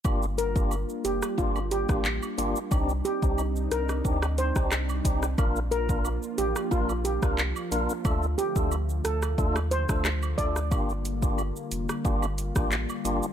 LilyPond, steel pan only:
\new Staff \with { instrumentName = "Steel pan" } { \time 4/4 \key g \minor \tempo 4 = 90 r8 bes'16 r8. g'16 r16 f'16 r16 g'16 r4 r16 | r8 g'16 r8. bes'16 r8. c''16 r4 r16 | r8 bes'16 r8. g'16 r16 f'16 r16 g'16 r4 r16 | r8 g'16 r8. a'16 r8. c''16 r8. d''16 r16 |
r1 | }